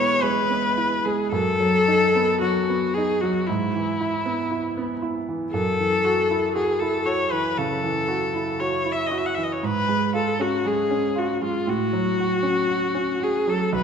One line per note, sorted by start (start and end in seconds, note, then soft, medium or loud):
0.00 1.35 B2 soft
0.00 0.23 G#3 soft
0.00 0.50 B3 soft
0.00 0.77 E4 medium
0.00 0.24 C#5 medium
0.22 0.66 G#3 soft
0.22 1.06 B4 medium
0.50 0.94 B3 soft
0.77 1.21 E4 soft
1.05 1.33 G#3 soft
1.05 1.32 G#4 medium
1.32 3.43 F#2 medium
1.32 2.39 A4 medium
1.60 2.03 F#3 soft
1.88 2.31 D#4 soft
2.15 2.58 B3 soft
2.42 2.85 F#3 soft
2.42 2.96 F#4 medium
2.70 3.11 B3 soft
2.94 3.38 D#4 soft
2.94 3.23 G#4 medium
3.21 3.48 F#3 soft
3.21 3.48 F#4 medium
3.47 5.49 G#2 medium
3.47 5.00 E4 medium
3.75 4.15 E3 soft
4.01 4.40 E4 medium
4.26 4.65 B3 soft
4.51 4.91 E4 soft
4.77 5.17 B3 soft
5.02 5.43 E4 soft
5.29 5.53 E3 soft
5.52 7.54 F#2 medium
5.52 6.51 A4 medium
5.79 6.20 E3 soft
6.05 6.45 F#4 soft
6.31 6.71 E4 soft
6.55 6.96 F#4 soft
6.55 6.81 G#4 medium
6.80 7.22 E4 soft
6.80 7.07 A4 medium
7.06 7.47 F#4 soft
7.06 7.33 C#5 medium
7.31 7.73 E3 soft
7.31 7.59 B4 medium
7.58 7.99 C#3 soft
7.58 8.62 A4 medium
7.84 8.24 E3 soft
8.08 8.49 F#4 soft
8.35 8.75 E4 soft
8.60 9.01 F#4 soft
8.60 8.94 C#5 medium
8.86 9.27 E4 soft
8.92 9.08 E5 medium
9.07 9.19 D#5 medium
9.11 9.52 F#4 soft
9.18 9.27 E5 medium
9.26 9.36 F#5 medium
9.35 9.63 E3 soft
9.35 9.45 E5 medium
9.43 9.54 D#5 medium
9.52 9.66 C#5 medium
9.63 11.64 G#2 medium
9.63 10.15 B4 medium
9.88 10.29 G#3 soft
10.13 10.55 F4 soft
10.13 10.43 A4 medium
10.39 10.81 C#4 soft
10.39 10.69 F#4 medium
10.65 11.07 G#3 soft
10.65 11.20 G#4 medium
10.91 11.32 C#4 soft
11.16 11.57 F4 soft
11.16 11.43 F#4 medium
11.42 11.67 G#3 soft
11.42 11.71 F4 medium
11.67 13.69 A2 medium
11.67 13.25 F#4 medium
11.93 12.34 F#3 soft
12.19 12.60 F#4 medium
12.43 12.85 C#4 soft
12.69 13.11 F#4 soft
12.95 13.36 C#4 soft
13.20 13.62 F#4 soft
13.20 13.51 G#4 medium
13.47 13.73 F#3 soft
13.47 13.74 A4 medium
13.73 13.83 B1 medium
13.73 13.83 B4 medium